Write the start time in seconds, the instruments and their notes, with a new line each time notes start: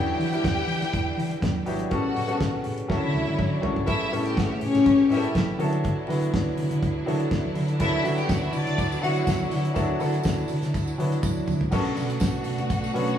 Already playing: fingered electric bass E2, string section D3 G3 E4 G4 G5, grand piano F#3 B3 D4 E4 G4
0.18 fingered electric bass E3, open hi-hat, muted conga
0.32 grand piano G3 B3 D4 E4 G4, closed hi-hat
0.42 fingered electric bass E2, kick, snare, closed hi-hat, high conga
0.67 fingered electric bass E3, open hi-hat
0.81 snare, closed hi-hat, low conga
0.94 fingered electric bass E2, kick, closed hi-hat
1.17 fingered electric bass E3, open hi-hat, muted conga, low conga
1.31 closed hi-hat
1.41 fingered electric bass E2, kick, snare, closed hi-hat, high conga
1.66 fingered electric bass G#1, grand piano F#3 B3 D4 E4 G4, open hi-hat, high conga
1.79 closed hi-hat
1.90 fingered electric bass A1, string section C#3 B3 F#4 F#5, grand piano G3 B3 C#4 F#4 A4, kick, closed hi-hat, muted conga
2.14 fingered electric bass A2, open hi-hat, muted conga
2.27 grand piano G3 B3 C#4 F#4 A4, closed hi-hat
2.38 fingered electric bass A1, kick, snare, closed hi-hat, high conga
2.64 fingered electric bass A2, open hi-hat
2.78 closed hi-hat
2.88 fingered electric bass D2, string section D3 F#3 E4 C#5 E5, grand piano F#3 C#4 D4 E4 A4, kick, snare
3.04 fingered electric bass D3
3.14 fingered electric bass D2, high tom, muted conga
3.27 fingered electric bass D3, high tom
3.38 fingered electric bass D3, kick, mid tom, high conga
3.62 fingered electric bass G#1, grand piano F#3 C#4 D4 E4 A4, floor tom, high conga
3.76 floor tom
3.85 fingered electric bass A1, string section C#3 A3 B3 E4 G4 E5, grand piano G3 B3 C#4 E4 A4, kick, closed hi-hat, muted conga
4.10 fingered electric bass A2, grand piano G3 B3 C#4 E4 A4, open hi-hat, muted conga
4.25 string section G4 G5, closed hi-hat
4.35 fingered electric bass A1, string section F#4 F#5, kick, snare, closed hi-hat, high conga
4.48 string section E4 E5
4.61 fingered electric bass A2, string section C#4 C#5, open hi-hat
4.75 fingered electric bass A2, snare, closed hi-hat, low conga
4.86 fingered electric bass A1, kick, closed hi-hat
5.10 fingered electric bass A2, grand piano G3 B3 C#4 E4 G4, string section E4 E5, open hi-hat, muted conga
5.17 grand piano A4
5.24 closed hi-hat
5.35 fingered electric bass A1, kick, snare, closed hi-hat, high conga
5.59 fingered electric bass D3, string section D3 F#3 E4, grand piano F#3 B3 D4 E4 A4, open hi-hat, high conga
5.73 closed hi-hat
5.84 kick, closed hi-hat, muted conga
6.07 fingered electric bass D3, grand piano F#3 B3 D4 E4 B4, open hi-hat, muted conga
6.23 closed hi-hat
6.32 fingered electric bass D2, kick, snare, closed hi-hat, high conga
6.57 fingered electric bass D3, open hi-hat
6.71 fingered electric bass D3, closed hi-hat
6.82 fingered electric bass D2, kick, closed hi-hat
7.06 fingered electric bass D3, grand piano F#3 B3 D4 E4 A4, open hi-hat, muted conga, low conga
7.20 closed hi-hat
7.31 fingered electric bass D2, kick, snare, closed hi-hat, high conga
7.55 fingered electric bass D3, open hi-hat, high conga
7.68 closed hi-hat
7.79 fingered electric bass D2, grand piano F#3 B3 D4 E4 A4, string section E4 E5, kick, closed hi-hat, tambourine, muted conga
8.03 fingered electric bass D3, grand piano F#3 B3 D4 E4 F#4, open hi-hat, tambourine, muted conga
8.16 string section G4 G5, closed hi-hat, tambourine
8.27 fingered electric bass D2, string section F#4 F#5, kick, snare, closed hi-hat, tambourine, high conga
8.41 string section E4 E5
8.52 fingered electric bass D3, string section D4 D5, open hi-hat, tambourine
8.65 fingered electric bass D3, closed hi-hat, low conga
8.78 fingered electric bass D2, kick, closed hi-hat, tambourine
8.92 tambourine
9.02 fingered electric bass D3, grand piano F#3 B3 D4 E4 F#4, string section F#4 F#5, open hi-hat
9.16 closed hi-hat, tambourine
9.26 fingered electric bass D2, kick, snare, closed hi-hat, tambourine, high conga
9.50 fingered electric bass D3, open hi-hat, tambourine, high conga
9.65 closed hi-hat
9.74 fingered electric bass D2, grand piano F#3 B3 D4 E4 A4, kick, closed hi-hat, tambourine, muted conga
10.00 fingered electric bass D3, grand piano F#3 B3 D4 E4 A4, open hi-hat, tambourine, muted conga
10.12 closed hi-hat, tambourine
10.23 fingered electric bass D2, kick, snare, closed hi-hat, tambourine, high conga
10.48 fingered electric bass D3, open hi-hat, tambourine
10.62 fingered electric bass D3, snare, closed hi-hat, tambourine
10.74 fingered electric bass D2, kick, closed hi-hat, tambourine
10.87 tambourine
10.98 fingered electric bass D3, grand piano F#3 B3 D4 E4 B4, open hi-hat, muted conga, low conga
11.12 closed hi-hat, tambourine
11.23 fingered electric bass D2, kick, high tom, tambourine, high conga
11.47 fingered electric bass D3, mid tom, tambourine, high conga
11.61 floor tom
11.71 fingered electric bass B1, string section D3 A3 B3 F#4 F#5, grand piano F#3 B3 C#4 D4 A4, kick, crash, tambourine, muted conga
11.85 tambourine
11.95 fingered electric bass B2, open hi-hat, tambourine, muted conga
12.10 closed hi-hat, tambourine
12.20 fingered electric bass B1, kick, snare, closed hi-hat, tambourine, high conga
12.44 fingered electric bass B2, open hi-hat, tambourine
12.58 fingered electric bass B2, closed hi-hat, tambourine, low conga
12.70 fingered electric bass B1, kick, closed hi-hat, tambourine
12.84 tambourine
12.94 fingered electric bass B2, grand piano F#3 B3 C#4 D4 B4, open hi-hat, muted conga
13.08 closed hi-hat